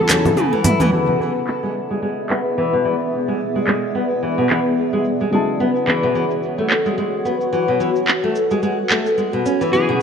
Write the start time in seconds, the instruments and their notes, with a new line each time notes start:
Already playing: electric slide guitar A4, ambient pad A4 F#5 A5 B5
0.08 felt piano C#3 F#3 B3 E4 A4, nylon-string guitar C#4, clap, open hi-hat, high tom, high conga, cabasa
0.24 felt piano C#3 F#3 B3 E4 A4, mid tom, low conga, cabasa
0.37 nylon-string guitar C#3, mid tom, cabasa
0.53 nylon-string guitar E3
0.64 nylon-string guitar E4, mid tom, open hi-hat, low conga, cabasa
0.80 nylon-string guitar E3, mid tom, high bongo, high conga, cabasa
0.90 felt piano C#3 F#3 B3 E4, nylon-string guitar E3, ambient pad B3 G#4 D5 E5
0.94 felt piano G#4
1.08 nylon-string guitar B2
1.20 nylon-string guitar E3
1.35 cabasa
1.47 clap, cabasa
1.63 nylon-string guitar G#3
1.75 cabasa
1.91 nylon-string guitar G#3, cabasa
2.02 nylon-string guitar G#3, cabasa
2.30 nylon-string guitar B3, clap, cabasa
2.46 cabasa
2.58 nylon-string guitar E3, cabasa
2.73 nylon-string guitar B2
2.85 nylon-string guitar E3, cabasa
3.01 cabasa
3.13 cabasa
3.28 nylon-string guitar G#3
3.40 cabasa
3.56 nylon-string guitar G#3, cabasa
3.67 nylon-string guitar G#3, clap
3.95 nylon-string guitar B3, cabasa
4.10 cabasa
4.22 nylon-string guitar E3, cabasa
4.38 nylon-string guitar B2
4.50 nylon-string guitar E3, clap, cabasa
4.65 cabasa
4.77 cabasa
4.93 nylon-string guitar G#3
5.04 cabasa
5.20 nylon-string guitar G#3, cabasa
5.30 felt piano C#3 F#3 B3 E4, nylon-string guitar G#3, ambient pad F#4 C#5 F#5, cabasa
5.34 felt piano A5
5.60 nylon-string guitar B3, cabasa
5.76 cabasa
5.87 nylon-string guitar E3, clap, cabasa
6.03 nylon-string guitar B2
6.15 nylon-string guitar E3, cabasa
6.31 cabasa
6.43 cabasa
6.58 nylon-string guitar A3
6.70 clap, cabasa
6.86 nylon-string guitar G#3, cabasa
6.98 nylon-string guitar G#3, cabasa
7.25 nylon-string guitar B3, cabasa
7.41 cabasa
7.53 nylon-string guitar E3, ambient pad B4, cabasa
7.68 nylon-string guitar B2
7.80 nylon-string guitar E3, cabasa
7.96 cabasa
8.08 clap, cabasa
8.24 nylon-string guitar A3
8.35 cabasa
8.51 nylon-string guitar G#3, cabasa
8.63 nylon-string guitar G#3, cabasa
8.90 nylon-string guitar A3, clap, cabasa
9.06 cabasa
9.18 nylon-string guitar G#3, cabasa
9.33 nylon-string guitar B2
9.46 nylon-string guitar C#4, cabasa
9.61 nylon-string guitar E3, cabasa
9.71 felt piano C#3 F#3 B3 E4, nylon-string guitar E3, ambient pad B3 D5 E5 G#5, electric slide guitar G#4, cabasa
9.75 felt piano B4
9.89 nylon-string guitar B2